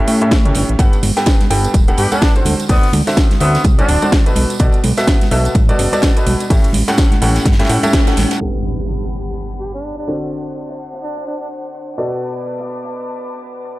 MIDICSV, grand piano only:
0, 0, Header, 1, 2, 480
1, 0, Start_track
1, 0, Key_signature, 1, "major"
1, 0, Tempo, 476190
1, 796, Time_signature, 4, 2, 24, 8
1, 13903, End_track
2, 0, Start_track
2, 0, Title_t, "Grand piano"
2, 0, Program_c, 0, 0
2, 0, Note_on_c, 0, 45, 85
2, 0, Note_on_c, 0, 61, 75
2, 0, Note_on_c, 0, 67, 76
2, 0, Note_on_c, 0, 69, 77
2, 0, Note_on_c, 0, 76, 96
2, 182, Note_off_c, 0, 45, 0
2, 182, Note_off_c, 0, 61, 0
2, 182, Note_off_c, 0, 67, 0
2, 182, Note_off_c, 0, 69, 0
2, 182, Note_off_c, 0, 76, 0
2, 215, Note_on_c, 0, 76, 95
2, 216, Note_on_c, 0, 45, 88
2, 216, Note_on_c, 0, 61, 75
2, 216, Note_on_c, 0, 67, 77
2, 216, Note_on_c, 0, 69, 80
2, 422, Note_off_c, 0, 45, 0
2, 422, Note_off_c, 0, 61, 0
2, 422, Note_off_c, 0, 67, 0
2, 422, Note_off_c, 0, 69, 0
2, 422, Note_off_c, 0, 76, 0
2, 456, Note_on_c, 0, 61, 62
2, 457, Note_on_c, 0, 45, 72
2, 457, Note_on_c, 0, 67, 66
2, 457, Note_on_c, 0, 69, 66
2, 457, Note_on_c, 0, 73, 80
2, 710, Note_off_c, 0, 45, 0
2, 710, Note_off_c, 0, 61, 0
2, 710, Note_off_c, 0, 67, 0
2, 710, Note_off_c, 0, 69, 0
2, 710, Note_off_c, 0, 73, 0
2, 797, Note_on_c, 0, 43, 82
2, 797, Note_on_c, 0, 59, 76
2, 797, Note_on_c, 0, 67, 73
2, 797, Note_on_c, 0, 69, 72
2, 797, Note_on_c, 0, 78, 95
2, 956, Note_off_c, 0, 43, 0
2, 956, Note_off_c, 0, 59, 0
2, 956, Note_off_c, 0, 67, 0
2, 956, Note_off_c, 0, 69, 0
2, 956, Note_off_c, 0, 78, 0
2, 1176, Note_on_c, 0, 43, 85
2, 1176, Note_on_c, 0, 67, 81
2, 1176, Note_on_c, 0, 79, 92
2, 1177, Note_on_c, 0, 59, 80
2, 1177, Note_on_c, 0, 69, 81
2, 1430, Note_off_c, 0, 43, 0
2, 1430, Note_off_c, 0, 59, 0
2, 1430, Note_off_c, 0, 67, 0
2, 1430, Note_off_c, 0, 69, 0
2, 1430, Note_off_c, 0, 79, 0
2, 1516, Note_on_c, 0, 43, 80
2, 1516, Note_on_c, 0, 59, 70
2, 1516, Note_on_c, 0, 79, 87
2, 1517, Note_on_c, 0, 67, 69
2, 1517, Note_on_c, 0, 69, 77
2, 1775, Note_off_c, 0, 43, 0
2, 1775, Note_off_c, 0, 59, 0
2, 1775, Note_off_c, 0, 67, 0
2, 1775, Note_off_c, 0, 69, 0
2, 1775, Note_off_c, 0, 79, 0
2, 1896, Note_on_c, 0, 43, 86
2, 1896, Note_on_c, 0, 59, 79
2, 1896, Note_on_c, 0, 67, 75
2, 1896, Note_on_c, 0, 78, 91
2, 1897, Note_on_c, 0, 69, 77
2, 2102, Note_off_c, 0, 67, 0
2, 2103, Note_off_c, 0, 43, 0
2, 2103, Note_off_c, 0, 59, 0
2, 2103, Note_off_c, 0, 69, 0
2, 2103, Note_off_c, 0, 78, 0
2, 2136, Note_on_c, 0, 43, 85
2, 2136, Note_on_c, 0, 59, 78
2, 2136, Note_on_c, 0, 67, 76
2, 2136, Note_on_c, 0, 69, 82
2, 2136, Note_on_c, 0, 78, 101
2, 2342, Note_off_c, 0, 43, 0
2, 2342, Note_off_c, 0, 67, 0
2, 2342, Note_off_c, 0, 78, 0
2, 2343, Note_off_c, 0, 59, 0
2, 2343, Note_off_c, 0, 69, 0
2, 2376, Note_on_c, 0, 50, 72
2, 2376, Note_on_c, 0, 60, 66
2, 2376, Note_on_c, 0, 66, 63
2, 2376, Note_on_c, 0, 69, 69
2, 2376, Note_on_c, 0, 72, 78
2, 2629, Note_off_c, 0, 50, 0
2, 2629, Note_off_c, 0, 60, 0
2, 2629, Note_off_c, 0, 66, 0
2, 2629, Note_off_c, 0, 69, 0
2, 2629, Note_off_c, 0, 72, 0
2, 2716, Note_on_c, 0, 50, 81
2, 2716, Note_on_c, 0, 60, 72
2, 2716, Note_on_c, 0, 66, 74
2, 2716, Note_on_c, 0, 69, 75
2, 2716, Note_on_c, 0, 74, 90
2, 2876, Note_off_c, 0, 50, 0
2, 2876, Note_off_c, 0, 60, 0
2, 2876, Note_off_c, 0, 66, 0
2, 2876, Note_off_c, 0, 69, 0
2, 2876, Note_off_c, 0, 74, 0
2, 3096, Note_on_c, 0, 50, 88
2, 3096, Note_on_c, 0, 60, 80
2, 3096, Note_on_c, 0, 66, 85
2, 3096, Note_on_c, 0, 69, 81
2, 3096, Note_on_c, 0, 76, 100
2, 3349, Note_off_c, 0, 50, 0
2, 3349, Note_off_c, 0, 60, 0
2, 3349, Note_off_c, 0, 66, 0
2, 3349, Note_off_c, 0, 69, 0
2, 3349, Note_off_c, 0, 76, 0
2, 3436, Note_on_c, 0, 50, 79
2, 3436, Note_on_c, 0, 60, 76
2, 3436, Note_on_c, 0, 66, 73
2, 3436, Note_on_c, 0, 69, 72
2, 3436, Note_on_c, 0, 76, 94
2, 3695, Note_off_c, 0, 50, 0
2, 3695, Note_off_c, 0, 60, 0
2, 3695, Note_off_c, 0, 66, 0
2, 3695, Note_off_c, 0, 69, 0
2, 3695, Note_off_c, 0, 76, 0
2, 3816, Note_on_c, 0, 50, 84
2, 3816, Note_on_c, 0, 60, 78
2, 3816, Note_on_c, 0, 66, 76
2, 3816, Note_on_c, 0, 69, 75
2, 3816, Note_on_c, 0, 74, 94
2, 4022, Note_off_c, 0, 50, 0
2, 4022, Note_off_c, 0, 60, 0
2, 4022, Note_off_c, 0, 66, 0
2, 4022, Note_off_c, 0, 69, 0
2, 4022, Note_off_c, 0, 74, 0
2, 4056, Note_on_c, 0, 50, 87
2, 4056, Note_on_c, 0, 60, 78
2, 4056, Note_on_c, 0, 66, 79
2, 4056, Note_on_c, 0, 69, 83
2, 4056, Note_on_c, 0, 74, 95
2, 4262, Note_off_c, 0, 60, 0
2, 4262, Note_off_c, 0, 66, 0
2, 4262, Note_off_c, 0, 69, 0
2, 4262, Note_off_c, 0, 74, 0
2, 4263, Note_off_c, 0, 50, 0
2, 4296, Note_on_c, 0, 66, 65
2, 4296, Note_on_c, 0, 69, 66
2, 4296, Note_on_c, 0, 71, 84
2, 4297, Note_on_c, 0, 47, 71
2, 4297, Note_on_c, 0, 59, 67
2, 4550, Note_off_c, 0, 47, 0
2, 4550, Note_off_c, 0, 59, 0
2, 4550, Note_off_c, 0, 66, 0
2, 4550, Note_off_c, 0, 69, 0
2, 4550, Note_off_c, 0, 71, 0
2, 4635, Note_on_c, 0, 59, 75
2, 4635, Note_on_c, 0, 74, 92
2, 4636, Note_on_c, 0, 47, 87
2, 4636, Note_on_c, 0, 66, 75
2, 4636, Note_on_c, 0, 69, 80
2, 4796, Note_off_c, 0, 47, 0
2, 4796, Note_off_c, 0, 59, 0
2, 4796, Note_off_c, 0, 66, 0
2, 4796, Note_off_c, 0, 69, 0
2, 4796, Note_off_c, 0, 74, 0
2, 5015, Note_on_c, 0, 47, 91
2, 5015, Note_on_c, 0, 59, 84
2, 5015, Note_on_c, 0, 66, 83
2, 5015, Note_on_c, 0, 69, 81
2, 5015, Note_on_c, 0, 76, 104
2, 5269, Note_off_c, 0, 47, 0
2, 5269, Note_off_c, 0, 59, 0
2, 5269, Note_off_c, 0, 66, 0
2, 5269, Note_off_c, 0, 69, 0
2, 5269, Note_off_c, 0, 76, 0
2, 5355, Note_on_c, 0, 69, 75
2, 5356, Note_on_c, 0, 47, 79
2, 5356, Note_on_c, 0, 59, 77
2, 5356, Note_on_c, 0, 66, 73
2, 5356, Note_on_c, 0, 76, 90
2, 5614, Note_off_c, 0, 69, 0
2, 5615, Note_off_c, 0, 47, 0
2, 5615, Note_off_c, 0, 59, 0
2, 5615, Note_off_c, 0, 66, 0
2, 5615, Note_off_c, 0, 76, 0
2, 5735, Note_on_c, 0, 47, 84
2, 5735, Note_on_c, 0, 59, 78
2, 5735, Note_on_c, 0, 66, 79
2, 5735, Note_on_c, 0, 69, 74
2, 5735, Note_on_c, 0, 74, 92
2, 5942, Note_off_c, 0, 47, 0
2, 5942, Note_off_c, 0, 59, 0
2, 5942, Note_off_c, 0, 66, 0
2, 5942, Note_off_c, 0, 69, 0
2, 5942, Note_off_c, 0, 74, 0
2, 5975, Note_on_c, 0, 47, 92
2, 5975, Note_on_c, 0, 59, 84
2, 5975, Note_on_c, 0, 66, 81
2, 5976, Note_on_c, 0, 69, 83
2, 5976, Note_on_c, 0, 74, 97
2, 6182, Note_off_c, 0, 47, 0
2, 6182, Note_off_c, 0, 59, 0
2, 6182, Note_off_c, 0, 66, 0
2, 6182, Note_off_c, 0, 69, 0
2, 6182, Note_off_c, 0, 74, 0
2, 6215, Note_on_c, 0, 47, 76
2, 6215, Note_on_c, 0, 59, 69
2, 6215, Note_on_c, 0, 66, 69
2, 6216, Note_on_c, 0, 69, 65
2, 6216, Note_on_c, 0, 71, 84
2, 6469, Note_off_c, 0, 47, 0
2, 6469, Note_off_c, 0, 59, 0
2, 6469, Note_off_c, 0, 66, 0
2, 6469, Note_off_c, 0, 69, 0
2, 6469, Note_off_c, 0, 71, 0
2, 6555, Note_on_c, 0, 45, 83
2, 6555, Note_on_c, 0, 61, 78
2, 6555, Note_on_c, 0, 67, 82
2, 6555, Note_on_c, 0, 69, 74
2, 6555, Note_on_c, 0, 76, 91
2, 6716, Note_off_c, 0, 45, 0
2, 6716, Note_off_c, 0, 61, 0
2, 6716, Note_off_c, 0, 67, 0
2, 6716, Note_off_c, 0, 69, 0
2, 6716, Note_off_c, 0, 76, 0
2, 6934, Note_on_c, 0, 67, 78
2, 6935, Note_on_c, 0, 45, 92
2, 6935, Note_on_c, 0, 61, 81
2, 6935, Note_on_c, 0, 69, 83
2, 6935, Note_on_c, 0, 78, 101
2, 7189, Note_off_c, 0, 45, 0
2, 7189, Note_off_c, 0, 61, 0
2, 7189, Note_off_c, 0, 67, 0
2, 7189, Note_off_c, 0, 69, 0
2, 7189, Note_off_c, 0, 78, 0
2, 7275, Note_on_c, 0, 45, 82
2, 7275, Note_on_c, 0, 61, 73
2, 7275, Note_on_c, 0, 67, 76
2, 7275, Note_on_c, 0, 69, 74
2, 7275, Note_on_c, 0, 78, 92
2, 7534, Note_off_c, 0, 45, 0
2, 7534, Note_off_c, 0, 61, 0
2, 7534, Note_off_c, 0, 67, 0
2, 7534, Note_off_c, 0, 69, 0
2, 7534, Note_off_c, 0, 78, 0
2, 7655, Note_on_c, 0, 45, 85
2, 7655, Note_on_c, 0, 69, 75
2, 7656, Note_on_c, 0, 61, 77
2, 7656, Note_on_c, 0, 67, 78
2, 7656, Note_on_c, 0, 76, 90
2, 7736, Note_off_c, 0, 45, 0
2, 7736, Note_off_c, 0, 61, 0
2, 7736, Note_off_c, 0, 67, 0
2, 7736, Note_off_c, 0, 69, 0
2, 7736, Note_off_c, 0, 76, 0
2, 7755, Note_on_c, 0, 45, 77
2, 7755, Note_on_c, 0, 61, 71
2, 7755, Note_on_c, 0, 67, 73
2, 7755, Note_on_c, 0, 69, 74
2, 7755, Note_on_c, 0, 78, 91
2, 7862, Note_off_c, 0, 45, 0
2, 7862, Note_off_c, 0, 61, 0
2, 7862, Note_off_c, 0, 67, 0
2, 7862, Note_off_c, 0, 69, 0
2, 7862, Note_off_c, 0, 78, 0
2, 7895, Note_on_c, 0, 69, 101
2, 7896, Note_on_c, 0, 45, 108
2, 7896, Note_on_c, 0, 61, 100
2, 7896, Note_on_c, 0, 67, 94
2, 7896, Note_on_c, 0, 76, 119
2, 8094, Note_off_c, 0, 45, 0
2, 8094, Note_off_c, 0, 61, 0
2, 8094, Note_off_c, 0, 67, 0
2, 8094, Note_off_c, 0, 69, 0
2, 8094, Note_off_c, 0, 76, 0
2, 8135, Note_on_c, 0, 45, 72
2, 8135, Note_on_c, 0, 61, 65
2, 8135, Note_on_c, 0, 67, 66
2, 8135, Note_on_c, 0, 69, 66
2, 8135, Note_on_c, 0, 78, 81
2, 8452, Note_off_c, 0, 45, 0
2, 8452, Note_off_c, 0, 61, 0
2, 8452, Note_off_c, 0, 67, 0
2, 8452, Note_off_c, 0, 69, 0
2, 8452, Note_off_c, 0, 78, 0
2, 8475, Note_on_c, 0, 69, 62
2, 8476, Note_on_c, 0, 43, 69
2, 8476, Note_on_c, 0, 59, 62
2, 8476, Note_on_c, 0, 67, 61
2, 10132, Note_off_c, 0, 43, 0
2, 10132, Note_off_c, 0, 59, 0
2, 10132, Note_off_c, 0, 67, 0
2, 10132, Note_off_c, 0, 69, 0
2, 10156, Note_on_c, 0, 50, 71
2, 10156, Note_on_c, 0, 60, 65
2, 10156, Note_on_c, 0, 66, 67
2, 10156, Note_on_c, 0, 69, 65
2, 10156, Note_on_c, 0, 74, 77
2, 12052, Note_off_c, 0, 50, 0
2, 12052, Note_off_c, 0, 60, 0
2, 12052, Note_off_c, 0, 66, 0
2, 12052, Note_off_c, 0, 69, 0
2, 12052, Note_off_c, 0, 74, 0
2, 12075, Note_on_c, 0, 47, 74
2, 12075, Note_on_c, 0, 74, 78
2, 12076, Note_on_c, 0, 59, 63
2, 12076, Note_on_c, 0, 66, 63
2, 12076, Note_on_c, 0, 69, 66
2, 13903, Note_off_c, 0, 47, 0
2, 13903, Note_off_c, 0, 59, 0
2, 13903, Note_off_c, 0, 66, 0
2, 13903, Note_off_c, 0, 69, 0
2, 13903, Note_off_c, 0, 74, 0
2, 13903, End_track
0, 0, End_of_file